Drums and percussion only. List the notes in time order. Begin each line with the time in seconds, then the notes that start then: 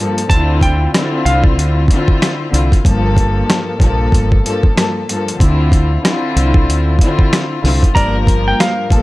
0.18 closed hi-hat
0.30 kick, closed hi-hat
0.61 kick, closed hi-hat
0.94 cross-stick, snare, closed hi-hat
1.26 closed hi-hat
1.44 kick
1.59 closed hi-hat
1.88 kick, closed hi-hat
2.08 kick
2.22 cross-stick, snare, closed hi-hat
2.54 closed hi-hat
2.72 kick, closed hi-hat
2.85 kick, closed hi-hat
3.17 kick, closed hi-hat
3.50 cross-stick, snare, closed hi-hat
3.80 kick, closed hi-hat
4.12 kick, closed hi-hat
4.32 kick
4.46 closed hi-hat
4.63 kick
4.78 cross-stick, snare, closed hi-hat
5.09 closed hi-hat
5.28 closed hi-hat
5.40 kick, closed hi-hat
5.72 kick, closed hi-hat
6.05 cross-stick, snare, closed hi-hat
6.37 closed hi-hat
6.54 kick
6.70 closed hi-hat
6.99 kick, closed hi-hat
7.19 kick
7.33 cross-stick, snare, closed hi-hat
7.65 snare, open hi-hat
7.83 kick, closed hi-hat
7.96 kick, closed hi-hat
8.27 kick, closed hi-hat
8.60 cross-stick, snare, closed hi-hat
8.90 kick, closed hi-hat